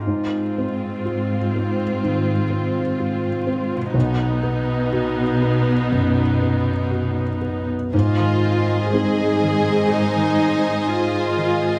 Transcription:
<<
  \new Staff \with { instrumentName = "Violin section" } { \time 4/4 \key aes \lydian \tempo 4 = 61 r1 | r1 | aes''1 | }
  \new Staff \with { instrumentName = "Violin section" } { \time 4/4 \key aes \lydian r1 | r1 | <c'' ees''>1 | }
  \new Staff \with { instrumentName = "Viola section" } { \time 4/4 \key aes \lydian <c' f'>1 | <b dis'>1 | f'4 aes'4 ees'4 f'4 | }
  \new Staff \with { instrumentName = "Felt piano" } { \time 4/4 \key aes \lydian aes,8 c'8 f'8 c'8 ees8 c'8 f'8 c'8 | b,,8 b8 fis'8 b8 fis,8 b8 fis'8 b8 | aes,4 <c' ees' aes'>2. | }
  \new Staff \with { instrumentName = "Harp" } { \time 4/4 \key aes \lydian << { <aes, c' ees' f'>1 | <b, b dis' fis'>1~ | <b, b dis' fis'>1 | } \\ { r1 | r1 | aes,16 ees16 c'16 ees'16 aes'16 ees'16 ees16 c'16 aes,16 ees16 c'16 ees'16 aes'16 ees'16 ees16 c'16 | } >> }
  \new Staff \with { instrumentName = "Cello section" } { \clef bass \time 4/4 \key aes \lydian aes,1 | b,1 | aes,1 | }
>>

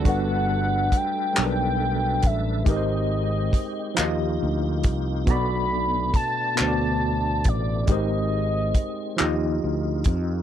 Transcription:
<<
  \new Staff \with { instrumentName = "Soft synth lead" } { \time 6/8 \key b \phrygian \tempo 4. = 46 fis''4 g''4. e''8 | ees''2~ ees''8 r8 | b''4 a''4. d''8 | ees''2 r4 | }
  \new Staff \with { instrumentName = "Tine electric piano" } { \time 6/8 \key b \phrygian <g d' fis' a' b'>4. <fis g d' a' bes' b'>4. | <aes ees' g' bes' b' c''>4. <f ees' f' fis' g' ees''>4. | <b, b fis' a' d''>4. <b, b fis' a' c'' d''>4. | <aes ees' g' bes' c''>4. <f ees' f' g' ees''>4. | }
  \new Staff \with { instrumentName = "Tonewheel organ" } { \time 6/8 \key b \phrygian << { b'2. | g'2. | d'2. | r2. | } \\ { <a d' a'>2. | <aes c'>4. <bes ees' f'>4. | <a b>2. | <aes c'>4. <ees' f'>4. | } >> }
  \new Staff \with { instrumentName = "Fretless electric bass" } { \clef bass \time 6/8 \key b \phrygian g,,4 r8 b,,4 a,,8 | aes,,4 r8 ees,8 d,8 c,8 | b,,4 r8 d,4 a,,8 | aes,,4 r8 ees,8 d,8 f,8 | }
  \new DrumStaff \with { instrumentName = "Drums" } \drummode { \time 6/8 <hh bd>4 <hh bd>8 <hc hh>4 <hh bd>8 | <hh bd>4 <hh bd>8 <hc hh>4 <hh bd>8 | <hh bd>4 <hh bd>8 <hc hh>4 <hh bd>8 | <hh bd>4 <hh bd>8 <hc hh>4 <hh bd>8 | }
>>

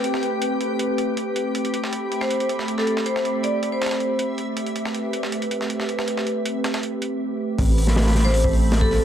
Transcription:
<<
  \new Staff \with { instrumentName = "Synth texture" } { \time 4/4 \key a \minor \tempo 4 = 159 <g' g''>1 | e''1~ | e''1~ | e''1~ |
e''2. r4 | <c'' b''>1 | }
  \new Staff \with { instrumentName = "Vibraphone" } { \time 4/4 \key a \minor r1 | r4. r16 c''8 r4 a'8 r16 | c''8. r16 d''8 r16 c''4. r8. | r1 |
r1 | r4. r16 c''8 r4 a'8 r16 | }
  \new Staff \with { instrumentName = "Ambient pad" } { \time 4/4 \key a \minor <a c' g' b'>1 | <a c' g' b''>1~ | <a c' g' b''>1 | <a c' g' b'>1~ |
<a c' g' b'>1 | <a c' g' b''>2~ <a c' g' b''>8 <a c' g' b''>4. | }
  \new Staff \with { instrumentName = "Sub bass" } { \clef bass \time 4/4 \key a \minor r1 | r1 | r1 | r1 |
r1 | a,,2.~ a,,8 r8 | }
  \new DrumStaff \with { instrumentName = "Drums" } \drummode { \time 4/4 hh16 sn16 hh8 hh8 hh8 hh8 hh8 hh8 hh8 | hh16 hh16 hh16 sn16 hh8 hh16 sn16 hh16 hh16 hh16 sn16 hh16 sn16 hh16 sn16 | hh16 sn16 hh8 hh8 hh8 <hh sn>32 <hh sn>32 <hh sn>16 hh8 hh8 hh8 | hh16 hh16 hh16 sn16 hh8 hh16 sn16 hh16 hh16 hh16 sn16 hh16 sn16 hh16 sn16 |
hh16 sn16 hh8 hh8 <hh sn>16 <hh sn>16 hh8 hh8 r4 | <hho bd>8 hho16 sn16 <hho sn>16 sn16 <hho sn>16 sn16 hho16 bd16 hho8 <hho sn>16 bd16 <hho sn>8 | }
>>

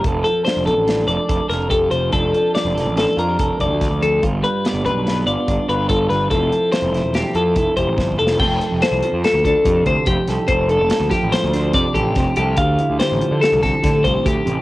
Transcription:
<<
  \new Staff \with { instrumentName = "Clean electric guitar" } { \time 5/4 \key f \major \tempo 4 = 144 r8 a'8 c''8 a'4 d''4 bes'8 a'8 c''8 | a'4 d''4 a'8 bes'4 d''4 a'8 | r8 b'8 d''8 b'4 d''4 b'8 a'8 b'8 | a'4 c''4 g'8 a'4 c''4 a'8 |
g''4 c''4 a'8 a'4 c''8 g'4 | c''8 a'4 g'8 c''4 d''8 g'4 g'8 | f''4 c''4 a'8 a'4 c''8 g'4 | }
  \new Staff \with { instrumentName = "Clean electric guitar" } { \time 5/4 \key f \major << { a'4 d'8 a'8 d'8 a'8 a'8 a'8 g'4 | <f d' a'>4 d'8 a'8 d'8 f'16 g'16 a'8 a'4. | f'4 b8 d'8 b8 f'8 d'8 f'8 f'4 | <f c' e' a'>4 c'8 e'8 c'8 a'8 e'8 g'8 c''4 |
a'8 a'8 a'4. d'4 a'8 c''8 a'8 | a'8 a'8 a'4. d'4 a'8 c''8 a'8 | g'8 e'8 g'4. c'4 f'16 g'4~ g'16 | } \\ { f,8 f2.~ f8 f,8 f8 | f,8 f1 f,8 | g,8 g2.~ g8 g,8 g8 | f,8 f2.~ f8 f,8 f8 |
f,4. f4. c4 f,4 | f,4. f4. c4 f,4 | d4. f4. a,4 d8 c8 | } >> }
  \new Staff \with { instrumentName = "Picked electric bass" } { \clef bass \time 5/4 \key f \major f,,8 r8. f,,16 c,16 a,,8. f,,16 r16 f,,16 r16 f,,4 f,,8 | f,,8 r8. f,,16 f,,16 a,,8 r16 f,8 f,,16 r16 f,,16 d,8 d,8. | g,,8 r8. g,,16 d,16 b,,8. g,,16 r16 g,,16 r16 g,,4 g,,8 | f,,8 r8. f,,16 f,,16 e,,8 r16 f,8 f,,16 r16 f,,16 a,,16 g,,8 f,,8 |
f,,8 r16 f,,16 r16 c,16 r16 f,16 r16 d,8 r16 f,8 d,16 r16 f,,16 r16 c,16 r16 | f,,8. f,,16 r16 d,16 r16 a,,16 r16 d,8. f,16 r16 a,,8 f,,16 r16 c,8 | d,8 r16 d,16 r16 a,,16 r16 d16 r16 c,8 r16 d8 c,16 r16 d,16 r16 a,,16 r16 | }
  \new DrumStaff \with { instrumentName = "Drums" } \drummode { \time 5/4 <hh bd>8 hh8 <hh sn>8 hh8 <hh sn>8 hh8 <hh bd>8 <hh sn>8 <hh bd>8 hh8 | <hh bd>8 hh8 <hh sn>8 <hh sn>8 <hh sn>8 hh8 <hh bd>8 <hh bd>8 <hh bd sn>8 hh8 | <hh bd>8 hh8 <hh sn>8 hh8 <hh sn>8 hh8 <hh bd>8 hh8 <hh bd>8 <hh sn>8 | <hh bd>8 hh8 <hh sn>8 <hh sn>8 <hh sn>8 hh8 <hh bd>8 <hh bd>8 \tuplet 3/2 { <bd sn>8 bd8 sn8 } |
<cymc bd>8 hh8 <hh sn>8 hh8 <hh sn>8 <hh bd>8 <hh bd>8 <hh bd>8 <hh bd>8 <hh sn>8 | <hh bd>8 hh8 <hh sn>8 <hh bd sn>8 <hh sn>8 <hh sn>8 <hh bd>8 <hh bd>8 <hh bd sn>8 hh8 | <hh bd>8 hh8 <hh sn>8 hh8 <hh sn>8 <hh bd sn>8 <hh bd sn>8 <hh bd>8 <hh bd>8 hh8 | }
>>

